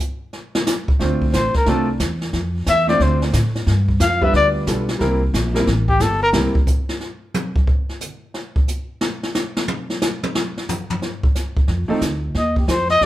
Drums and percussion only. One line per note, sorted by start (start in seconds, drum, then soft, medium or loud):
0.33 snare soft
0.55 snare loud
0.67 snare medium
0.67 hi-hat pedal medium
0.88 kick medium
1.00 brush sweep medium
1.00 snare soft
1.22 kick medium
1.33 kick soft
1.33 snare medium
1.33 hi-hat pedal medium
1.54 kick medium
1.54 snare soft
1.66 brush sweep medium
1.66 snare medium
2.00 kick soft
2.00 snare medium
2.00 hi-hat pedal medium
2.21 snare soft
2.33 brush sweep medium
2.33 kick soft
2.33 snare soft
2.67 kick soft
2.67 snare medium
2.67 hi-hat pedal medium
2.89 snare soft
3.00 brush sweep medium
3.00 kick soft
3.00 snare soft
3.22 snare medium
3.33 kick soft
3.33 snare medium
3.33 hi-hat pedal medium
3.55 snare soft
3.67 brush sweep medium
3.67 kick soft
3.67 snare soft
3.88 kick medium
4.00 kick soft
4.00 snare medium
4.00 hi-hat pedal medium
4.22 kick medium
4.34 brush sweep soft
4.34 kick soft
4.34 snare soft
4.67 kick soft
4.67 snare medium
4.67 hi-hat pedal medium
4.89 snare medium
5.00 brush sweep soft
5.00 kick soft
5.00 snare soft
5.34 kick soft
5.34 snare medium
5.34 hi-hat pedal medium
5.55 snare medium
5.67 brush sweep medium
5.67 kick soft
5.67 snare medium
5.88 kick medium
6.00 snare medium
6.00 hi-hat pedal medium
6.33 snare loud
6.55 kick medium
6.67 kick medium
6.67 hi-hat pedal medium
6.89 snare medium
7.00 snare soft
7.34 hi-hat pedal medium
7.34 high tom loud
7.56 kick medium
7.67 kick medium
7.89 snare soft
8.01 hi-hat pedal medium
8.01 mid tom soft
8.34 snare medium
8.56 kick medium
8.68 hi-hat pedal medium
9.01 snare loud
9.23 snare medium
9.35 snare medium
9.35 hi-hat pedal medium
9.57 snare medium
9.68 high tom loud
9.90 snare soft
10.02 snare loud
10.02 hi-hat pedal medium
10.23 high tom loud
10.35 snare loud
10.57 snare soft
10.69 floor tom loud
10.69 hi-hat pedal medium
10.90 floor tom loud
11.02 snare medium
11.23 kick medium
11.35 snare soft
11.35 hi-hat pedal medium
11.57 kick medium
11.68 brush sweep medium
11.68 kick soft
11.68 snare soft
12.01 kick soft
12.01 snare medium
12.01 hi-hat pedal medium
12.35 brush sweep medium
12.35 kick soft
12.35 snare soft
12.56 kick medium
12.68 kick soft
12.68 snare medium
12.68 hi-hat pedal medium
12.89 snare soft
13.01 brush sweep medium
13.01 kick soft
13.01 snare soft